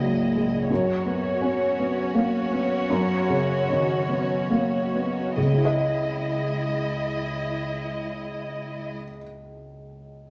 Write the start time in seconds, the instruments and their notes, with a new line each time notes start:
Already playing: felt piano C#2 G#2 A#2 G#3, string section G#3 E4 D#5
0.01 felt piano F#3
0.36 felt piano G#3
0.70 felt piano F#2, string section C#4 F#4 C#5
1.06 felt piano B3
1.42 felt piano C#4
1.79 felt piano B3
2.15 felt piano A#3
2.53 felt piano B3
2.90 felt piano F#2
3.29 felt piano C#3
3.68 felt piano D#3
4.09 felt piano B3
4.50 felt piano A#3
4.94 felt piano B3
5.36 felt piano C#2, string section G#3 E4 D#5
5.44 felt piano C#3
5.51 felt piano G#3
5.58 felt piano E4
5.65 felt piano D#5